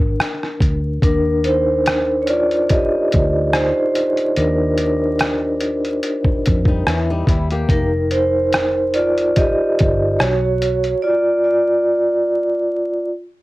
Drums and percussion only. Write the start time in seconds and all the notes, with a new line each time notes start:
0.20 cross-stick, closed hi-hat
0.43 cross-stick
0.60 kick, closed hi-hat
1.02 kick, closed hi-hat
1.44 closed hi-hat
1.86 cross-stick, closed hi-hat
2.27 closed hi-hat
2.51 closed hi-hat
2.69 kick, closed hi-hat
3.12 kick, closed hi-hat
3.53 cross-stick, closed hi-hat
3.95 closed hi-hat
4.17 closed hi-hat
4.36 closed hi-hat
4.78 closed hi-hat
5.19 cross-stick, closed hi-hat
5.61 closed hi-hat
5.85 closed hi-hat
6.03 closed hi-hat
6.24 kick
6.46 kick, closed hi-hat
6.65 kick
6.87 cross-stick, closed hi-hat
7.27 kick, closed hi-hat
7.50 closed hi-hat
7.69 kick, closed hi-hat
8.11 closed hi-hat
8.53 cross-stick, closed hi-hat
8.94 closed hi-hat
9.18 closed hi-hat
9.36 kick, closed hi-hat
9.79 kick, closed hi-hat
10.20 cross-stick, closed hi-hat
10.62 closed hi-hat
10.84 closed hi-hat